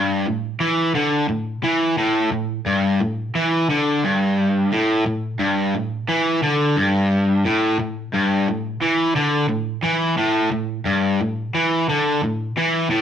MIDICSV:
0, 0, Header, 1, 2, 480
1, 0, Start_track
1, 0, Tempo, 683371
1, 1389, Time_signature, 4, 2, 24, 8
1, 9142, End_track
2, 0, Start_track
2, 0, Title_t, "Overdriven electric guitar"
2, 0, Program_c, 0, 29
2, 0, Note_on_c, 0, 43, 97
2, 178, Note_off_c, 0, 43, 0
2, 183, Note_on_c, 0, 45, 65
2, 377, Note_off_c, 0, 45, 0
2, 424, Note_on_c, 0, 52, 102
2, 658, Note_off_c, 0, 52, 0
2, 665, Note_on_c, 0, 50, 100
2, 899, Note_off_c, 0, 50, 0
2, 905, Note_on_c, 0, 45, 65
2, 1099, Note_off_c, 0, 45, 0
2, 1147, Note_on_c, 0, 52, 99
2, 1382, Note_off_c, 0, 52, 0
2, 1389, Note_on_c, 0, 45, 103
2, 1623, Note_off_c, 0, 45, 0
2, 1631, Note_on_c, 0, 45, 73
2, 1823, Note_off_c, 0, 45, 0
2, 1869, Note_on_c, 0, 43, 95
2, 2104, Note_off_c, 0, 43, 0
2, 2111, Note_on_c, 0, 45, 69
2, 2304, Note_off_c, 0, 45, 0
2, 2355, Note_on_c, 0, 52, 98
2, 2587, Note_off_c, 0, 52, 0
2, 2599, Note_on_c, 0, 50, 100
2, 2829, Note_off_c, 0, 50, 0
2, 2841, Note_on_c, 0, 43, 94
2, 3310, Note_off_c, 0, 43, 0
2, 3315, Note_on_c, 0, 45, 102
2, 3547, Note_off_c, 0, 45, 0
2, 3556, Note_on_c, 0, 45, 65
2, 3747, Note_off_c, 0, 45, 0
2, 3790, Note_on_c, 0, 43, 100
2, 4025, Note_off_c, 0, 43, 0
2, 4038, Note_on_c, 0, 45, 68
2, 4228, Note_off_c, 0, 45, 0
2, 4276, Note_on_c, 0, 52, 102
2, 4508, Note_off_c, 0, 52, 0
2, 4517, Note_on_c, 0, 50, 103
2, 4748, Note_off_c, 0, 50, 0
2, 4752, Note_on_c, 0, 43, 99
2, 5225, Note_off_c, 0, 43, 0
2, 5235, Note_on_c, 0, 45, 106
2, 5467, Note_off_c, 0, 45, 0
2, 5475, Note_on_c, 0, 45, 65
2, 5666, Note_off_c, 0, 45, 0
2, 5714, Note_on_c, 0, 43, 94
2, 5946, Note_off_c, 0, 43, 0
2, 5957, Note_on_c, 0, 45, 68
2, 6147, Note_off_c, 0, 45, 0
2, 6193, Note_on_c, 0, 52, 96
2, 6425, Note_off_c, 0, 52, 0
2, 6432, Note_on_c, 0, 50, 97
2, 6662, Note_off_c, 0, 50, 0
2, 6665, Note_on_c, 0, 45, 67
2, 6860, Note_off_c, 0, 45, 0
2, 6909, Note_on_c, 0, 52, 100
2, 7142, Note_off_c, 0, 52, 0
2, 7148, Note_on_c, 0, 45, 104
2, 7380, Note_off_c, 0, 45, 0
2, 7388, Note_on_c, 0, 45, 70
2, 7581, Note_off_c, 0, 45, 0
2, 7624, Note_on_c, 0, 43, 96
2, 7859, Note_off_c, 0, 43, 0
2, 7872, Note_on_c, 0, 45, 71
2, 8062, Note_off_c, 0, 45, 0
2, 8109, Note_on_c, 0, 52, 97
2, 8341, Note_off_c, 0, 52, 0
2, 8352, Note_on_c, 0, 50, 97
2, 8582, Note_off_c, 0, 50, 0
2, 8591, Note_on_c, 0, 45, 71
2, 8780, Note_off_c, 0, 45, 0
2, 8829, Note_on_c, 0, 52, 102
2, 9059, Note_off_c, 0, 52, 0
2, 9063, Note_on_c, 0, 45, 104
2, 9142, Note_off_c, 0, 45, 0
2, 9142, End_track
0, 0, End_of_file